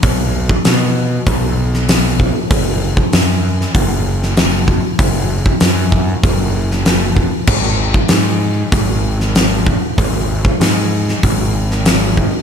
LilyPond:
<<
  \new Staff \with { instrumentName = "Picked electric bass" } { \clef bass \time 4/4 \key gis \dorian \tempo 4 = 96 b,,4 b,4 b,,2 | fis,,4 fis,4 fis,,2 | fis,,4 fis,4 fis,,2 | gis,,4 gis,4 gis,,2 |
gis,,4 gis,4 gis,,2 | }
  \new DrumStaff \with { instrumentName = "Drums" } \drummode { \time 4/4 <hho bd>8. bd16 <hho sn>4 <hho bd>8. sn16 <hho sn>8 bd8 | <hho bd>8. bd16 <hho sn>8. sn16 <hho bd>8. sn16 <hho sn>8 bd8 | <hho bd>8. bd16 <hho sn>8 bd8 <hho bd>8. sn16 <hho sn>8 bd8 | <cymc bd>8. bd16 <hho sn>4 <hho bd>8. sn16 <hho sn>8 bd8 |
<hho bd>8. bd16 <hho sn>8. sn16 <hho bd>8. sn16 <hho sn>8 bd8 | }
>>